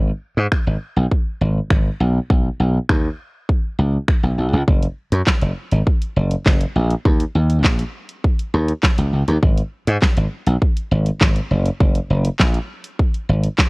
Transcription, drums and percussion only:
0.52 finger snap, kick
1.11 kick
1.71 finger snap, kick
2.30 kick
2.89 finger snap, kick
3.49 kick
4.08 finger snap, kick
4.68 kick
4.82 closed hi-hat
5.12 closed hi-hat
5.27 kick, snare, clap
5.42 closed hi-hat
5.71 closed hi-hat
5.87 kick
6.02 closed hi-hat
6.31 closed hi-hat
6.46 kick, snare, clap
6.61 closed hi-hat
6.90 closed hi-hat
7.05 kick
7.20 closed hi-hat
7.50 closed hi-hat
7.64 kick, snare, clap
7.79 closed hi-hat
8.09 closed hi-hat
8.24 kick
8.39 closed hi-hat
8.68 closed hi-hat
8.83 kick, snare, clap
8.98 closed hi-hat
9.28 closed hi-hat
9.43 kick
9.58 closed hi-hat
9.87 closed hi-hat
10.02 kick, snare, clap
10.17 closed hi-hat
10.47 closed hi-hat
10.62 kick
10.77 closed hi-hat
11.06 closed hi-hat
11.21 kick, snare, clap
11.36 closed hi-hat
11.65 closed hi-hat
11.80 kick
11.95 closed hi-hat
12.25 closed hi-hat
12.40 kick, snare, clap
12.54 closed hi-hat
12.84 closed hi-hat
12.99 kick
13.14 closed hi-hat
13.44 closed hi-hat
13.59 kick, snare, clap

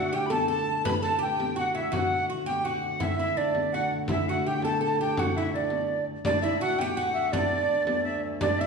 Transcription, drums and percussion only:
0.30 frame drum
0.49 frame drum
0.67 frame drum
0.85 frame drum
1.40 frame drum
1.57 frame drum
1.75 frame drum
1.93 frame drum
2.48 frame drum
2.66 frame drum
2.83 frame drum
3.00 frame drum
3.19 frame drum
3.55 frame drum
3.72 frame drum
3.91 frame drum
4.08 frame drum
4.26 frame drum
4.62 frame drum
4.80 frame drum
4.98 frame drum
5.17 frame drum
5.53 frame drum
5.70 frame drum
6.07 frame drum
6.25 frame drum
6.43 frame drum
6.79 frame drum
6.97 frame drum
7.16 frame drum
7.33 frame drum
7.51 frame drum
7.87 frame drum
8.05 frame drum
8.24 frame drum
8.41 frame drum
8.59 frame drum

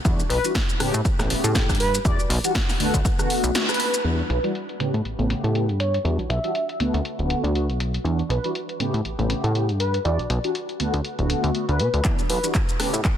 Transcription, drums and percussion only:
0.05 kick, closed hi-hat, shaker
0.20 shaker
0.30 open hi-hat
0.45 closed hi-hat, shaker
0.55 kick, snare, closed hi-hat, shaker
0.69 shaker
0.80 cross-stick, open hi-hat
0.94 closed hi-hat, shaker
1.05 kick, closed hi-hat, shaker
1.19 cross-stick, snare, shaker
1.30 open hi-hat
1.44 closed hi-hat, shaker
1.55 kick, snare, closed hi-hat, shaker
1.69 kick, cross-stick, closed hi-hat, shaker
1.75 closed hi-hat
1.80 open hi-hat
1.95 closed hi-hat, shaker
2.05 kick, closed hi-hat, shaker
2.19 shaker
2.30 open hi-hat
2.44 closed hi-hat, shaker
2.55 kick, snare, closed hi-hat, shaker
2.69 snare, open hi-hat, shaker
2.80 open hi-hat
2.94 kick, closed hi-hat, shaker
3.05 kick, closed hi-hat, shaker
3.19 cross-stick, shaker
3.30 open hi-hat
3.44 closed hi-hat, shaker
3.55 snare, closed hi-hat, shaker
3.69 cross-stick, closed hi-hat, shaker
3.74 closed hi-hat
3.80 open hi-hat
3.94 closed hi-hat, shaker
4.05 closed hi-hat
4.19 closed hi-hat
4.30 closed hi-hat
4.44 closed hi-hat
4.55 closed hi-hat
4.69 closed hi-hat
4.80 closed hi-hat
4.94 closed hi-hat
5.05 closed hi-hat
5.19 closed hi-hat
5.30 closed hi-hat
5.44 closed hi-hat
5.55 closed hi-hat
5.69 closed hi-hat
5.80 closed hi-hat
5.94 closed hi-hat
6.05 closed hi-hat
6.19 closed hi-hat
6.30 closed hi-hat
6.44 closed hi-hat
6.55 closed hi-hat
6.69 closed hi-hat
6.80 closed hi-hat
6.94 closed hi-hat
7.05 closed hi-hat
7.19 closed hi-hat
7.30 closed hi-hat
7.44 closed hi-hat
7.55 closed hi-hat
7.70 closed hi-hat
7.80 closed hi-hat
7.94 closed hi-hat
8.05 closed hi-hat
8.19 closed hi-hat
8.30 closed hi-hat
8.44 closed hi-hat
8.55 closed hi-hat
8.69 closed hi-hat
8.80 closed hi-hat
8.94 closed hi-hat
9.05 closed hi-hat
9.19 closed hi-hat
9.30 closed hi-hat
9.44 closed hi-hat
9.55 closed hi-hat
9.69 closed hi-hat
9.80 closed hi-hat
9.94 closed hi-hat
10.05 closed hi-hat
10.19 closed hi-hat
10.30 closed hi-hat
10.44 closed hi-hat
10.55 closed hi-hat
10.69 closed hi-hat
10.80 closed hi-hat
10.94 closed hi-hat
11.05 closed hi-hat
11.19 closed hi-hat
11.30 closed hi-hat
11.44 closed hi-hat
11.55 closed hi-hat
11.69 closed hi-hat
11.80 closed hi-hat
11.94 closed hi-hat
12.05 kick, clap, closed hi-hat, shaker
12.19 closed hi-hat, shaker
12.30 open hi-hat
12.44 closed hi-hat, shaker
12.55 kick, clap, closed hi-hat, shaker
12.69 closed hi-hat, shaker
12.80 cross-stick, open hi-hat
12.94 closed hi-hat, shaker
13.05 kick, clap, closed hi-hat, shaker

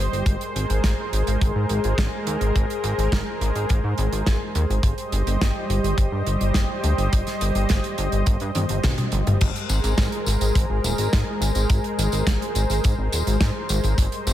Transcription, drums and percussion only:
0.13 closed hi-hat
0.26 kick, closed hi-hat
0.41 closed hi-hat
0.56 closed hi-hat
0.70 closed hi-hat
0.84 kick, snare, closed hi-hat
1.13 closed hi-hat
1.27 closed hi-hat
1.41 kick, closed hi-hat
1.69 closed hi-hat
1.84 closed hi-hat
1.98 kick, snare, closed hi-hat
2.27 closed hi-hat
2.41 closed hi-hat
2.56 kick, closed hi-hat
2.70 closed hi-hat
2.84 closed hi-hat
2.99 closed hi-hat
3.12 kick, snare, closed hi-hat
3.41 closed hi-hat
3.56 closed hi-hat
3.69 kick, closed hi-hat
3.98 closed hi-hat
4.13 closed hi-hat
4.26 kick, snare, closed hi-hat
4.55 closed hi-hat
4.70 closed hi-hat
4.83 kick, closed hi-hat
4.98 closed hi-hat
5.12 closed hi-hat
5.27 closed hi-hat
5.41 kick, snare, closed hi-hat
5.70 closed hi-hat
5.84 closed hi-hat
5.98 kick, closed hi-hat
6.27 closed hi-hat
6.41 closed hi-hat
6.54 kick, snare, closed hi-hat
6.84 closed hi-hat
6.98 closed hi-hat
7.13 kick, closed hi-hat
7.27 snare, closed hi-hat
7.41 closed hi-hat
7.55 closed hi-hat
7.69 kick, snare, closed hi-hat
7.84 closed hi-hat
7.98 closed hi-hat
8.12 closed hi-hat
8.26 kick, closed hi-hat
8.40 closed hi-hat
8.55 closed hi-hat, high tom
8.69 closed hi-hat
8.84 kick, snare, closed hi-hat, mid tom
8.98 closed hi-hat, mid tom
9.12 closed hi-hat
9.27 closed hi-hat, mid tom
9.41 kick, closed hi-hat, tambourine, crash
9.56 closed hi-hat
9.69 closed hi-hat, tambourine
9.84 closed hi-hat, tambourine
9.98 kick, snare, closed hi-hat, tambourine
10.12 closed hi-hat
10.26 closed hi-hat, tambourine
10.41 closed hi-hat, tambourine
10.55 kick, closed hi-hat, tambourine
10.84 closed hi-hat, tambourine
10.98 closed hi-hat, tambourine
11.13 kick, snare, closed hi-hat, tambourine
11.42 closed hi-hat, tambourine
11.55 closed hi-hat, tambourine
11.70 kick, closed hi-hat, tambourine
11.84 closed hi-hat
11.99 closed hi-hat, tambourine
12.12 closed hi-hat, tambourine
12.27 kick, snare, closed hi-hat, tambourine
12.42 closed hi-hat
12.55 closed hi-hat, tambourine
12.70 closed hi-hat, tambourine
12.84 kick, closed hi-hat, tambourine
13.13 closed hi-hat, tambourine
13.27 closed hi-hat, tambourine
13.41 kick, snare, closed hi-hat, tambourine
13.69 closed hi-hat, tambourine
13.84 closed hi-hat, tambourine
13.98 kick, closed hi-hat, tambourine
14.12 closed hi-hat
14.27 closed hi-hat, tambourine

